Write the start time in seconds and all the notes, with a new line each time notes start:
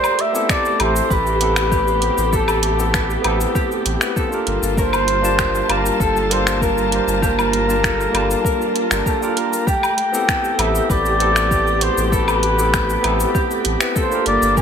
Already playing: A3 G4 A4 C5 D5
0.04 cabasa, low woodblock
0.19 E5, closed hi-hat
0.33 B3 C4 E4 G4 A4, cabasa
0.49 A4 D5, finger snap, kick, cabasa
0.65 cabasa
0.79 A1 A3 C4 E4 G4 A4 C5, closed hi-hat, low woodblock
0.96 cabasa
1.10 A1 B4, kick, cabasa
1.27 cabasa
1.40 B3 C4 E4 G4 A4, closed hi-hat
1.56 finger snap, cabasa
1.71 G4, kick, cabasa
1.88 cabasa
1.99 B3 C4 E4, closed hi-hat
2.04 G4
2.18 A1, cabasa
2.33 A4, kick, cabasa
2.48 cabasa, low woodblock
2.63 closed hi-hat
2.78 B3 C4 E4 G4 A4, cabasa
2.94 B4, finger snap, kick, cabasa
3.10 cabasa
3.22 A1 B3 C4 E4, closed hi-hat, low woodblock
3.26 G4 A4
3.41 cabasa
3.55 G4, kick, cabasa
3.72 cabasa
3.85 A1, closed hi-hat
4.00 B3 C4 E4 G4 B4, finger snap, cabasa
4.16 A4, kick, cabasa
4.29 A#3 D4 F4, cabasa
4.33 G4 A#4
4.47 G1 G3 A#3 F4 A5, closed hi-hat
4.62 G1, cabasa
4.77 A#4 C5, kick, cabasa
4.93 cabasa, low woodblock
5.08 closed hi-hat
5.22 A#3 D4 F4 G4 A5, cabasa
5.39 G4, finger snap, kick, cabasa
5.55 cabasa
5.68 G1 A#3 D4 F4 G4 A#4 A5, closed hi-hat, low woodblock
5.86 cabasa
6.00 G1 A4, kick, cabasa
6.16 cabasa
6.30 A#3 D4 F4 G4 A4 C5, closed hi-hat
6.47 finger snap, cabasa
6.61 A#4, kick, cabasa
6.78 cabasa
6.90 A#3 D4 F4, closed hi-hat
6.94 G4 C5
7.07 G1, cabasa
7.22 G4 A#4, kick, cabasa
7.39 cabasa, low woodblock
7.53 closed hi-hat
7.67 A#3 D4 F4 G4 A5, cabasa
7.83 A4, finger snap, kick, cabasa
8.01 cabasa
8.11 G1 A#3 D4 F4, closed hi-hat, low woodblock
8.16 G4 A5
8.31 cabasa
8.45 A#4, kick, cabasa
8.62 cabasa
8.76 closed hi-hat
8.90 G1 A#3 D4 F4 G4 A#4, finger snap, cabasa
9.06 G4 A4, kick, cabasa
9.21 A#3 D4 F4 G4 A#4, cabasa
9.37 A#4, closed hi-hat
9.53 cabasa
9.67 A3 G4 G5, kick, cabasa
9.83 cabasa, low woodblock
9.98 closed hi-hat
10.12 B3 C4 E4 G4 A4, cabasa
10.28 A4, finger snap, kick, cabasa
10.44 cabasa
10.57 A1 B3 C4 E4 G4 A4 E5, closed hi-hat, low woodblock
10.75 cabasa
10.90 A1 B4 D5, kick, cabasa
11.05 cabasa
11.19 B3 C4 E4 G4 A4, closed hi-hat
11.36 finger snap, cabasa
11.51 G4, kick, cabasa
11.67 cabasa
11.79 B3 C4 E4, closed hi-hat
11.83 G4 C5
11.97 A1, cabasa
12.07 C5
12.12 A4 B4, kick, cabasa
12.28 cabasa, low woodblock
12.43 closed hi-hat
12.57 B3 C4 E4 G4 A4, cabasa
12.73 B4, finger snap, kick, cabasa
12.90 cabasa
13.01 A1 B3 C4 E4, closed hi-hat, low woodblock
13.06 G4 A4
13.20 cabasa
13.34 G4, kick, cabasa
13.51 cabasa
13.65 A1, closed hi-hat
13.80 B3 C4 E4 G4 B4, finger snap, cabasa
13.95 A4 C5, kick, cabasa
14.09 A#3 D4 F4, cabasa
14.13 G4 A#4
14.26 G1 G3 A#3 F4 D5 A5, closed hi-hat
14.42 G1, cabasa
14.57 A#4 A5, kick, cabasa